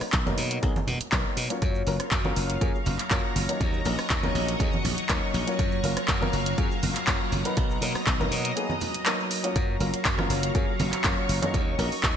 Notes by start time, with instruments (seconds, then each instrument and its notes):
0.01 muted slap bass stroke, cross-stick, open hi-hat, cabasa
0.12 slap bass B1, kick, clap, closed hi-hat, cabasa
0.26 grand piano F#3 A#3 B3 D#4 A#4, high conga, cabasa
0.38 slap bass B2, open hi-hat, cabasa
0.51 closed hi-hat, cabasa
0.62 slap bass B1, grand piano F#3 A#3 B3 D#4 G#4, kick, closed hi-hat, cabasa
0.76 high conga, cabasa
0.87 slap bass B2, open hi-hat, low conga, cabasa
1.00 muted slap bass stroke, closed hi-hat, cabasa
1.12 slap bass B1, grand piano F#3 A#3 B3 D#4 A#4, kick, clap, closed hi-hat, cabasa
1.37 slap bass B2, open hi-hat, cabasa
1.50 grand piano F#3 A#3 C#4 F4 C#5, closed hi-hat, cabasa
1.62 slap bass F#2, string machine F#3 F5 A#5 C#6, kick, closed hi-hat, cabasa
1.75 cabasa
1.87 slap bass F#1, grand piano F#3 A#3 C#4 F4 A#4, open hi-hat, cabasa
2.00 muted slap bass stroke, cross-stick, closed hi-hat, cabasa
2.11 slap bass F#2, kick, clap, closed hi-hat, cabasa
2.24 grand piano F#3 A#3 C#4 F4 A#4, high conga
2.36 slap bass F#1, open hi-hat, cabasa
2.50 closed hi-hat, cabasa
2.61 slap bass F#2, grand piano F#3 A#3 C#4 F4 G#4, kick, closed hi-hat, cabasa
2.75 cabasa
2.86 slap bass F#1, open hi-hat, low conga, cabasa
2.99 muted slap bass stroke, clap, closed hi-hat, cabasa
3.10 slap bass F#2, grand piano F#3 A#3 C#4 F4 A#4, kick, clap, closed hi-hat, cabasa
3.36 slap bass F#1, open hi-hat, high conga, cabasa
3.49 grand piano F#3 A#3 C#4 D#4 C#5, closed hi-hat, cabasa
3.60 slap bass D#2, string machine D#5, kick, closed hi-hat, cabasa
3.74 cabasa
3.85 slap bass A#1, grand piano F#3 A#3 C#4 D#4 A#4, open hi-hat, cabasa
3.98 muted slap bass stroke, cross-stick, open hi-hat, cabasa
4.10 slap bass D#2, kick, clap, closed hi-hat, cabasa
4.23 grand piano F#3 A#3 C#4 D#4 A#4, high conga, cabasa
4.35 slap bass A#1, open hi-hat, cabasa
4.48 closed hi-hat, cabasa
4.60 slap bass D#2, grand piano F#3 A#3 C#4 D#4 G#4, kick, closed hi-hat, cabasa
4.72 high conga, cabasa
4.84 slap bass A#1, open hi-hat, low conga, cabasa
4.98 muted slap bass stroke, closed hi-hat, cabasa
5.09 slap bass D#2, grand piano F#3 A#3 C#4 D#4 A#4, kick, clap, closed hi-hat, cabasa
5.34 slap bass A#1, open hi-hat, cabasa
5.47 grand piano F#3 A#3 C#4 F4 C#5, closed hi-hat, cabasa
5.59 slap bass F#2, string machine F5 A#5, kick, closed hi-hat, cabasa
5.72 cabasa
5.83 slap bass F#1, grand piano F#3 A#3 C#4 F4 A#4, open hi-hat, cabasa
5.97 muted slap bass stroke, cross-stick, closed hi-hat, cabasa
6.08 slap bass F#2, kick, clap, closed hi-hat, cabasa
6.21 grand piano F#3 A#3 C#4 F4 A#4, high conga
6.33 slap bass F#1, open hi-hat, cabasa
6.46 closed hi-hat, cabasa
6.58 slap bass F#2, grand piano F#3 A#3 C#4 F4 G#4, kick, closed hi-hat, cabasa
6.71 cabasa
6.83 slap bass F#1, open hi-hat, low conga, cabasa
6.95 muted slap bass stroke, clap, closed hi-hat, cabasa
7.07 slap bass F#2, grand piano F#3 A#3 C#4 F4 A#4, kick, clap, closed hi-hat, cabasa
7.32 slap bass F#1, open hi-hat, high conga, cabasa
7.45 grand piano F#3 B3 D#4 A#4 B4, closed hi-hat, cabasa
7.57 slap bass B1, string machine D#5, kick, closed hi-hat, cabasa
7.71 cabasa
7.81 slap bass B2, grand piano F#3 A#3 B3 D#4 A#4, open hi-hat, cabasa
7.94 muted slap bass stroke, cross-stick, open hi-hat, cabasa
8.07 slap bass B1, kick, clap, closed hi-hat, cabasa
8.20 grand piano F#3 A#3 B3 D#4 A#4, high conga, cabasa
8.31 slap bass B2, open hi-hat, cabasa
8.45 closed hi-hat, cabasa
8.56 grand piano F#3 A#3 B3 D#4 G#4, closed hi-hat, cabasa
8.70 high conga, cabasa
8.81 open hi-hat, low conga, cabasa
8.94 closed hi-hat, cabasa
9.06 grand piano F#3 A#3 B3 D#4 A#4, clap, closed hi-hat, cabasa
9.20 cabasa
9.31 open hi-hat, cabasa
9.44 grand piano F#3 A#3 C#4 F4 C#5, closed hi-hat, cabasa
9.56 slap bass F#2, string machine F#3 F5 A#5 C#6, kick, closed hi-hat, cabasa
9.80 slap bass F#1, grand piano F#3 A#3 C#4 F4 A#4, open hi-hat, cabasa
9.93 muted slap bass stroke, closed hi-hat, cabasa
10.05 slap bass F#2, kick, clap, closed hi-hat, cabasa
10.18 grand piano F#3 A#3 C#4 F4 A#4, cross-stick, high conga
10.30 slap bass F#1, open hi-hat, cabasa
10.43 closed hi-hat, cabasa
10.54 slap bass F#2, grand piano F#3 A#3 C#4 F4 G#4, kick, closed hi-hat, cabasa
10.79 slap bass F#1, open hi-hat, high conga, low conga, cabasa
10.92 muted slap bass stroke, clap, closed hi-hat, cabasa
11.04 slap bass F#2, grand piano F#3 A#3 C#4 F4 A#4, kick, clap, closed hi-hat, cabasa
11.29 slap bass F#1, open hi-hat, cabasa
11.42 grand piano F#3 A#3 C#4 D#4 C#5, closed hi-hat, high conga, cabasa
11.54 slap bass D#2, string machine F#3 D#5, kick, closed hi-hat, cabasa
11.78 slap bass A#1, grand piano F#3 A#3 C#4 D#4 A#4, open hi-hat, cabasa
11.92 open hi-hat, cabasa
12.03 slap bass D#2, kick, clap, closed hi-hat, cabasa